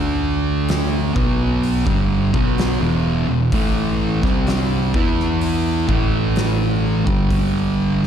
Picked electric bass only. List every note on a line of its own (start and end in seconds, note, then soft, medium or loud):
0.00 1.12 D2 loud
1.16 1.83 B1 medium
1.86 2.30 G1 loud
2.34 2.78 B1 loud
2.80 3.25 E1 loud
3.28 3.50 E1 medium
3.53 4.19 A1 medium
4.24 4.90 C2 medium
4.94 5.85 E2 medium
5.89 7.03 A1 medium
7.07 8.07 G1 loud